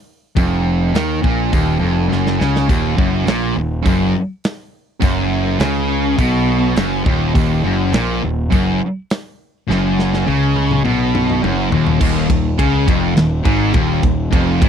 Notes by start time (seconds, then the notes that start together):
0.36 F1 F2, kick, open hi-hat
0.93 D#2 D#3, snare, open hi-hat
1.22 A#1 A#2, kick
1.51 D#1 D#2, kick, open hi-hat
1.79 F1 F2
2.08 F#2
2.12 F#1, snare
2.27 snare
2.39 C#2 C#3, snare
2.56 snare
2.69 D#1 D#2, kick, open hi-hat
2.97 F#1 F#2, kick
3.26 A#1 A#2, snare, open hi-hat
3.56 D#1 D#2
3.85 F#1 F#2, kick, open hi-hat
4.44 snare, open hi-hat
5.00 F#1 F#2, kick, open hi-hat
5.59 C#2 C#3, snare, open hi-hat
6.18 B1 B2, kick, open hi-hat
6.76 F#1 F#2, snare, open hi-hat
7.04 D#1 D#2, kick
7.34 D#1 D#2, kick, open hi-hat
7.64 F#1 F#2
7.93 A#1 A#2, snare, open hi-hat
8.23 D#1 D#2
8.51 F#1 F#2, kick, open hi-hat
9.10 snare, open hi-hat
9.67 F#1 F#2, snare
9.99 snare
10.14 snare
10.26 C#2 C#3, high tom
10.56 high tom
10.71 mid tom
10.84 B1 B2, mid tom
11.15 mid tom
11.30 mid tom
11.42 F#1 F#2, mid tom
11.72 D#1 D#2, floor tom
11.87 floor tom
12.01 D#1 D#2, kick, crash
12.30 D#1 D#2, kick, ride
12.58 C#2 C#3, kick, ride
12.88 F1 F2, kick, ride
13.16 D#1 D#2, snare, ride
13.43 G#1 G#2, kick, ride
13.73 D#1 D#2, kick, ride
14.02 D#1 D#2, kick, ride
14.30 F1 F2, kick, ride
14.61 G#1 G#2, kick, ride